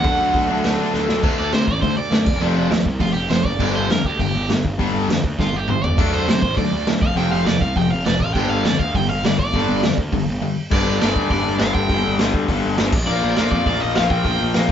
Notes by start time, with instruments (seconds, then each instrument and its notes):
Already playing: overdriven electric guitar F#5
0.03 picked electric bass D2, distorted electric guitar D3 F#3 A3 D4, kick, open hi-hat
0.20 picked electric bass D2
0.34 picked electric bass D2, kick, open hi-hat
0.49 picked electric bass D2, distorted electric guitar D3 A3 D4
0.64 picked electric bass D2, snare, open hi-hat
0.80 picked electric bass D3
0.94 picked electric bass D2, snare
1.09 picked electric bass D2, snare
1.23 picked electric bass D2, distorted electric guitar D3 A3 D4, kick, crash
1.38 picked electric bass D2, overdriven electric guitar D5
1.52 picked electric bass C3, distorted electric guitar D3 A3, overdriven electric guitar C5, snare, open hi-hat
1.68 picked electric bass A1, overdriven electric guitar D5, kick
1.82 picked electric bass D2, distorted electric guitar D3 A3, overdriven electric guitar C5, kick, open hi-hat
1.97 picked electric bass D2, overdriven electric guitar D5
2.11 picked electric bass F#2, distorted electric guitar D3 A3, snare, open hi-hat
2.26 picked electric bass F1, kick, crash
2.41 picked electric bass F1, distorted electric guitar F2 C3 F3 A3 C4
2.56 picked electric bass F1
2.70 picked electric bass D#2, distorted electric guitar F2 C3 F3 A3, snare, open hi-hat
2.86 picked electric bass C2, kick
2.99 picked electric bass F1, distorted electric guitar F2 C3 F3 A3, overdriven electric guitar F4, kick, open hi-hat
3.14 picked electric bass F1, overdriven electric guitar G4
3.30 picked electric bass F1, distorted electric guitar F2 C3 F3 A3, overdriven electric guitar C5, snare, open hi-hat
3.45 picked electric bass F#1, overdriven electric guitar D5, kick
3.59 picked electric bass G1, distorted electric guitar G2 D3 G3, kick, crash
3.76 picked electric bass G1, overdriven electric guitar C5
3.89 picked electric bass F2, distorted electric guitar G2 D3, overdriven electric guitar A#4, snare, open hi-hat
4.05 picked electric bass D2, overdriven electric guitar G4, kick
4.19 picked electric bass G1, distorted electric guitar G2 D3, overdriven electric guitar G4, kick, open hi-hat
4.34 picked electric bass G1
4.49 picked electric bass G1, distorted electric guitar G2 D3, snare, open hi-hat
4.65 picked electric bass G1, kick
4.78 picked electric bass G1, distorted electric guitar G2 D3 G3, kick, open hi-hat
4.94 picked electric bass G1
5.09 picked electric bass F2, distorted electric guitar G2 D3, snare, open hi-hat
5.24 picked electric bass D2, kick
5.39 picked electric bass G1, distorted electric guitar G2 D3, overdriven electric guitar F4, kick, snare
5.53 picked electric bass G1, overdriven electric guitar G4
5.68 picked electric bass G1, distorted electric guitar G2 D3, overdriven electric guitar C5, mid tom
5.83 picked electric bass G1, overdriven electric guitar D5, floor tom
5.98 picked electric bass D2, distorted electric guitar D3 F#3 A3 D4, kick, splash, crash
6.13 picked electric bass D2, overdriven electric guitar C5
6.28 picked electric bass C3, distorted electric guitar D3 F#3 A3, overdriven electric guitar C5, snare, open hi-hat
6.42 picked electric bass A1, overdriven electric guitar C5, kick
6.57 picked electric bass D2, distorted electric guitar D3 F#3 A3, overdriven electric guitar D5, kick, open hi-hat
6.72 picked electric bass D2
6.87 picked electric bass D2, distorted electric guitar D3 F#3 A3, snare, open hi-hat
7.02 picked electric bass F1, overdriven electric guitar F5, kick
7.15 picked electric bass F1, distorted electric guitar F2 C3 F3, overdriven electric guitar G5, open hi-hat
7.32 picked electric bass F1, overdriven electric guitar F5
7.45 picked electric bass D#2, distorted electric guitar F2 C3, overdriven electric guitar D5, snare, open hi-hat
7.61 picked electric bass C2, overdriven electric guitar F5, kick
7.76 picked electric bass F1, distorted electric guitar F2 C3, overdriven electric guitar G5, kick, open hi-hat
7.90 picked electric bass F1, overdriven electric guitar F5
8.05 picked electric bass F1, distorted electric guitar F2 C3, overdriven electric guitar D5, snare, open hi-hat
8.20 picked electric bass A1, overdriven electric guitar F5, kick
8.34 picked electric bass G1, distorted electric guitar G2 D3 G3, overdriven electric guitar G5, kick, crash
8.50 picked electric bass G1, overdriven electric guitar F5
8.65 picked electric bass F2, distorted electric guitar G2 D3, overdriven electric guitar D5, snare, open hi-hat
8.79 picked electric bass D2, overdriven electric guitar F5, kick
8.94 picked electric bass G1, distorted electric guitar G2 D3, overdriven electric guitar G5, kick, open hi-hat
9.09 picked electric bass G1, overdriven electric guitar F5
9.24 picked electric bass G1, distorted electric guitar G2 D3, overdriven electric guitar D5, snare, open hi-hat
9.39 picked electric bass G1, overdriven electric guitar D5, kick
9.53 picked electric bass G1, distorted electric guitar G2 D3 G3, kick, open hi-hat
9.69 picked electric bass G1
9.83 picked electric bass F2, distorted electric guitar G2 D3, snare, open hi-hat
9.98 picked electric bass D2, kick
10.12 picked electric bass G1, distorted electric guitar G2 D3, kick, open hi-hat
10.27 picked electric bass G1
10.42 distorted electric guitar G2 D3
10.71 picked electric bass G1, distorted electric guitar G2 D3 G3, overdriven electric guitar D5, kick, crash
10.87 picked electric bass G1
11.01 picked electric bass G1, distorted electric guitar G2 D3 G3, overdriven electric guitar D5, snare, open hi-hat
11.16 picked electric bass D2, kick
11.30 picked electric bass G1, distorted electric guitar G2 D3 G3, overdriven electric guitar D5, kick, open hi-hat
11.46 picked electric bass G1
11.59 picked electric bass G1, distorted electric guitar G2 D3 G3, overdriven electric guitar F5, snare, open hi-hat
11.74 picked electric bass G1, overdriven electric guitar G5, kick
11.89 picked electric bass G1, distorted electric guitar G2 D3 G3, kick, open hi-hat
12.06 picked electric bass G1
12.19 picked electric bass G1, distorted electric guitar G2 D3 G3, snare, open hi-hat
12.34 picked electric bass D2, kick
12.49 picked electric bass G1, distorted electric guitar G2 D3 G3, kick, open hi-hat
12.65 picked electric bass G1
12.77 picked electric bass G1, distorted electric guitar G2 D3 G3, snare, open hi-hat
12.92 picked electric bass A#1, kick, crash
13.07 picked electric bass A#1, distorted electric guitar A#2 F3 A#3, overdriven electric guitar D5
13.23 picked electric bass A#1
13.36 picked electric bass A#1, distorted electric guitar A#2 F3 A#3, overdriven electric guitar D5, snare, open hi-hat
13.51 picked electric bass F2, overdriven electric guitar D5, kick
13.66 picked electric bass A#1, distorted electric guitar A#2 F3 A#3, overdriven electric guitar D5, kick, open hi-hat
13.80 picked electric bass A#1, overdriven electric guitar D#5
13.95 picked electric bass A#1, distorted electric guitar A#2 F3 A#3, overdriven electric guitar F5, snare, open hi-hat
14.10 picked electric bass A#1, overdriven electric guitar G5, kick
14.24 picked electric bass A#1, distorted electric guitar A#2 F3 A#3, kick, open hi-hat
14.41 picked electric bass A#1
14.54 picked electric bass A#1, distorted electric guitar A#2 F3 A#3, snare, open hi-hat
14.69 picked electric bass F2, kick